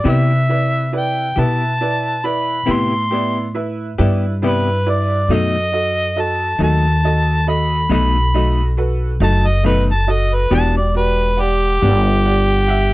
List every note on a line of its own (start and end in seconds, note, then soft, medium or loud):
0.00 0.31 C3 medium
0.00 0.11 D5 medium
0.05 1.32 C3 medium
0.05 0.31 B3 medium
0.05 0.31 E4 medium
0.05 0.38 E4 medium
0.05 0.32 G4 medium
0.05 0.38 B4 medium
0.05 0.39 D5 medium
0.09 0.92 E5 medium
0.49 0.82 E4 medium
0.49 0.82 B4 soft
0.49 0.82 D5 medium
0.93 1.25 E4 medium
0.93 1.26 B4 soft
0.93 1.26 D5 medium
0.97 1.41 G5 medium
1.36 2.63 B2 medium
1.36 1.63 B3 soft
1.36 1.63 E4 soft
1.36 1.70 E4 soft
1.36 1.62 G4 soft
1.36 1.70 B4 soft
1.36 1.70 E5 medium
1.36 2.27 A5 medium
1.81 2.13 E4 medium
1.81 2.13 B4 soft
1.81 2.13 D5 medium
2.24 2.56 E4 medium
2.24 2.57 B4 medium
2.24 2.57 D5 medium
2.24 2.73 B5 medium
2.66 3.94 A2 medium
2.66 2.93 C3 medium
2.66 2.93 B3 medium
2.66 3.00 B3 soft
2.66 2.93 E4 medium
2.66 3.00 E4 medium
2.66 2.93 G4 medium
2.66 3.01 E5 medium
2.72 3.54 C6 loud
3.11 3.44 B3 soft
3.11 3.38 B3 soft
3.11 3.44 E4 medium
3.11 3.38 E4 soft
3.11 3.37 G4 medium
3.11 3.44 D5 medium
3.54 3.87 E4 medium
3.54 3.87 B4 medium
3.54 3.87 E5 medium
3.98 5.25 G2 medium
3.98 4.25 B3 soft
3.98 4.31 E4 medium
3.98 4.25 E4 medium
3.98 4.24 G4 medium
3.98 4.31 B4 medium
3.98 4.31 D5 medium
4.42 4.68 C3 medium
4.42 4.69 B3 medium
4.42 4.75 E4 medium
4.42 4.69 E4 medium
4.42 4.69 G4 medium
4.42 4.74 B4 soft
4.42 4.91 B4 loud
4.42 4.75 D5 medium
4.86 5.18 E4 medium
4.86 5.18 B4 medium
4.86 5.18 D5 medium
4.86 5.35 D5 medium
5.28 6.55 F#2 medium
5.28 5.55 B2 medium
5.28 5.56 F#3 medium
5.28 5.56 A3 medium
5.28 5.56 D#4 medium
5.28 5.62 F#4 medium
5.28 5.62 A4 medium
5.28 5.63 D#5 medium
5.33 6.22 D#5 loud
5.72 6.05 F#4 medium
5.72 6.05 A4 soft
5.72 6.05 D#5 medium
6.16 6.49 F#4 medium
6.16 6.49 A4 soft
6.16 6.49 D#5 medium
6.20 6.60 A5 medium
6.58 7.86 D#2 medium
6.58 6.86 F#3 soft
6.58 6.86 A3 soft
6.58 6.85 D#4 medium
6.58 6.92 F#4 medium
6.58 6.92 A4 medium
6.58 6.92 D#5 medium
6.64 7.50 A5 loud
7.04 7.36 F#4 medium
7.04 7.36 A4 soft
7.04 7.37 D#5 medium
7.47 7.79 F#4 medium
7.47 7.80 A4 medium
7.47 7.80 D#5 medium
7.47 7.89 B5 loud
7.89 9.17 B1 medium
7.89 8.16 B2 medium
7.89 8.16 F#3 medium
7.89 8.17 A3 medium
7.89 8.17 D#4 medium
7.89 8.23 F#4 medium
7.89 8.23 A4 soft
7.89 8.23 D#5 medium
7.93 8.76 B5 loud
8.34 8.61 F#3 soft
8.34 8.60 A3 medium
8.34 8.60 D#4 medium
8.34 8.67 F#4 medium
8.34 8.67 A4 soft
8.34 8.67 D#5 medium
8.77 9.10 F#4 medium
8.77 9.10 A4 medium
8.77 9.10 B4 medium
9.20 10.47 F#1 loud
9.20 9.48 F#3 soft
9.20 9.47 A3 medium
9.20 9.47 D#4 medium
9.20 9.53 F#4 medium
9.20 9.53 A4 medium
9.20 9.54 D#5 medium
9.20 9.48 A5 loud
9.47 9.65 D#5 medium
9.63 9.90 B2 medium
9.63 9.91 F#3 medium
9.63 9.91 A3 medium
9.63 9.91 D#4 medium
9.63 9.96 F#4 medium
9.63 9.97 A4 medium
9.63 9.85 B4 loud
9.63 9.97 D#5 medium
9.91 10.13 A5 loud
10.07 10.40 F#4 medium
10.07 10.41 A4 soft
10.07 10.40 D#5 medium
10.07 10.36 D#5 medium
10.34 10.52 B4 medium
10.50 11.78 E1 medium
10.50 10.78 E3 medium
10.50 10.77 B3 medium
10.50 10.78 D4 medium
10.50 10.83 F#4 medium
10.50 10.84 G4 medium
10.50 10.78 G4 medium
10.50 10.84 D5 medium
10.55 10.73 A5 loud
10.77 10.95 D5 medium
10.95 11.27 F#4 medium
10.95 11.28 G4 medium
10.95 11.43 B4 loud
10.95 11.28 D5 medium
11.37 11.70 G4 medium
11.37 11.71 D5 medium
11.37 11.70 F#5 medium
11.41 12.94 G4 loud
11.82 12.94 G1 medium
11.82 12.09 B3 soft
11.82 12.08 D4 soft
11.82 12.08 G4 medium
11.82 12.15 G4 medium
11.82 12.15 D5 medium
11.82 12.15 F#5 medium
12.25 12.58 G4 medium
12.25 12.58 D5 medium
12.25 12.58 F#5 medium
12.68 12.94 G4 medium
12.68 12.94 E5 medium
12.68 12.94 F#5 medium